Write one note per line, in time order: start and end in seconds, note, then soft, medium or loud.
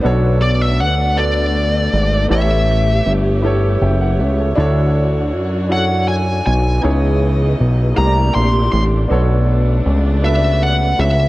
0.01 0.82 B1 loud
0.01 4.52 A3 medium
0.01 1.08 B3 medium
0.01 2.27 B3 medium
0.01 1.09 D4 medium
0.01 2.27 D4 medium
0.01 1.10 F#4 medium
0.01 1.10 A4 medium
0.06 1.11 C#5 loud
0.42 0.61 D5 medium
0.61 0.80 E5 medium
0.80 1.89 D2 medium
0.80 1.18 F#5 loud
1.15 2.22 B3 medium
1.15 2.22 D4 medium
1.15 2.23 F#4 medium
1.15 2.23 A4 medium
1.15 2.26 D5 loud
1.19 2.24 D5 medium
1.93 2.27 G#1 medium
2.28 3.01 A1 loud
2.28 3.35 B3 medium
2.28 3.36 E4 medium
2.28 4.54 G4 medium
2.28 3.36 G4 medium
2.28 3.37 A4 medium
2.28 6.78 C#5 medium
2.28 3.11 E5 medium
2.32 3.37 C#5 medium
3.06 3.77 G1 medium
3.42 4.48 B3 medium
3.42 4.49 E4 medium
3.42 4.49 G4 medium
3.42 3.81 A4 medium
3.46 3.82 C#5 loud
3.82 4.21 F#1 medium
3.82 3.99 E5 medium
3.82 3.99 G5 medium
4.01 4.18 F#5 medium
4.20 4.53 C#2 loud
4.20 4.37 C#5 medium
4.20 4.37 E5 medium
4.39 4.57 A4 medium
4.39 4.58 C#5 medium
4.55 5.34 D2 loud
4.55 6.80 D3 medium
4.55 5.62 D4 loud
4.55 5.62 E4 medium
4.55 6.80 F#4 medium
4.55 5.63 F#4 medium
4.55 5.63 A4 medium
4.60 5.64 C#5 loud
5.33 6.41 F#2 medium
5.68 6.75 D4 medium
5.68 6.75 E4 medium
5.68 6.76 F#4 medium
5.68 6.76 A4 medium
5.72 6.77 C#5 medium
5.72 6.08 F#5 loud
6.08 6.45 G#5 loud
6.46 6.80 B1 medium
6.46 6.81 G#5 medium
6.80 7.55 C#2 loud
6.80 7.95 C#3 medium
6.80 7.94 E3 medium
6.80 7.88 B3 medium
6.80 7.95 B3 medium
6.80 7.88 D#4 medium
6.80 7.89 E4 medium
6.80 7.90 G#4 medium
6.80 7.94 D#5 medium
6.85 7.90 C#5 medium
7.60 7.93 B1 medium
7.94 8.31 C2 loud
7.94 9.08 C3 medium
7.94 9.03 A3 medium
7.94 9.01 A#3 medium
7.94 9.08 C4 medium
7.94 9.08 D4 medium
7.94 9.02 E4 medium
7.94 9.08 E4 medium
7.94 9.08 G4 medium
7.94 9.02 G4 medium
7.94 8.34 A#5 medium
7.99 8.04 C5 medium
8.05 9.07 D5 medium
8.35 8.68 A#1 medium
8.35 8.71 C6 loud
8.72 9.06 A1 loud
8.72 8.82 C6 medium
9.08 9.81 B1 loud
9.08 11.29 A3 medium
9.08 10.14 B3 medium
9.08 11.29 B3 medium
9.08 10.15 D4 medium
9.08 11.29 D4 medium
9.08 10.16 F#4 medium
9.08 10.16 A4 medium
9.12 10.17 C#5 medium
9.86 10.94 C#2 medium
10.21 11.28 B3 medium
10.21 11.28 D4 medium
10.21 11.29 F#4 medium
10.21 11.29 A4 medium
10.21 10.62 E5 loud
10.26 11.29 B4 medium
10.63 11.00 F#5 loud
10.99 11.29 C#2 medium
10.99 11.29 E5 medium